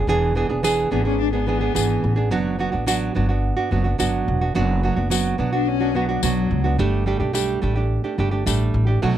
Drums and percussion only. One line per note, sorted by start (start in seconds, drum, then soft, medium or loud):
0.64 tambourine medium
1.76 tambourine loud
2.88 tambourine medium
4.00 tambourine medium
5.11 tambourine loud
6.23 tambourine loud
7.35 tambourine medium
8.47 tambourine loud